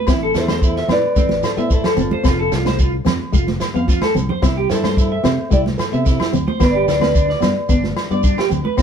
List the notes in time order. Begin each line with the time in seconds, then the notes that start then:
0.07 A1 C4 E4, kick, snare, low agogo, shekere
0.23 A4
0.35 E2 E4 A4 C5, snare, shekere
0.48 D4 C5, snare, high conga, low agogo, shekere
0.62 E4, kick, shekere
0.76 E5, snare
0.88 A2 C4 B4, snare, low conga, low agogo
0.92 D5
1.16 A1 A3 C4, kick, shekere
1.29 snare, high conga
1.43 A4 C5, snare, low agogo, shekere
1.57 A2 B3 E5, shekere
1.70 E4 A4 C5, kick, shekere
1.84 A4, snare, low conga, low agogo
1.97 G1 C4 F4 A4, low conga, shekere
2.11 C5, high conga
2.23 F1 C4 F4, kick, snare, low agogo, shekere
2.39 A4
2.52 C2 F4, snare, shekere
2.65 D4 C5, snare, high conga, low agogo, shekere
2.79 F4, kick, shekere
3.05 F2 C4, snare, high conga, low conga, low agogo, shekere
3.32 F1 A3 F4, kick, shekere
3.47 snare, high conga
3.60 snare, low agogo, shekere
3.74 F2 B3 F5, shekere
3.87 F4, kick, snare, high conga, shekere
4.02 A4, snare, high conga, low agogo
4.15 C2 C4, low conga, shekere
4.29 C5, low conga
4.42 C2 C4 E4, kick, snare, low agogo, shekere
4.57 G4
4.70 G2 E4 A4 C5, snare, shekere
4.84 D4 C5, snare, high conga, low agogo, shekere
4.97 E4, kick, shekere
5.12 E5
5.23 C3 C4 C5 E5, snare, low conga, low agogo, shekere
5.50 C2 A3 E4 G4 D5, kick, shekere
5.66 snare, high conga
5.78 A4 C5, snare, low agogo, shekere
5.92 C3 B3 E5, shekere
6.06 E4, kick, snare, shekere
6.20 E4, snare, low conga, low agogo
6.33 D2 C4, low conga, shekere
6.48 C5, high conga
6.60 G1 B3 D4 B4 D5, kick, snare, low agogo, shekere
6.75 G4
6.88 D2 D4, snare, shekere
7.00 C4 B4, snare, high conga, low agogo, shekere
7.15 D4, kick, shekere
7.29 D5, snare
7.40 G2 B3, snare, low conga, low agogo, shekere
7.69 G1 B3 D4, kick, shekere
7.84 snare, high conga
7.96 snare, low agogo
8.10 G2 B3 D5, shekere
8.23 D4, kick, shekere
8.38 G4, snare, low agogo
8.50 D2 C4, low conga, shekere
8.65 B4, high conga
8.77 A1 C4, kick, snare, low agogo, shekere